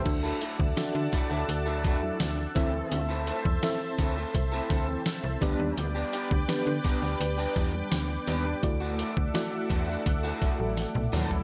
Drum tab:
CC |x---------------|----------------|----------------|----------------|
HH |--x-x-x-x-x-x-x-|x-x-x-x-x-x-x-x-|x-x-x-x-x-x-x-x-|x-x-x-x-x-x-x-o-|
TB |----x-------x---|----x-------x---|----x-------x---|----x-----------|
SD |----o-------o---|----o-------o---|----o-------o---|----o-------o---|
T1 |----------------|----------------|----------------|-------------o--|
T2 |----------------|----------------|----------------|--------------o-|
FT |----------------|----------------|----------------|---------------o|
BD |o--o--o---o---o-|---o--o-o-o---o-|---o--o---o-----|o--o--o-o-o-----|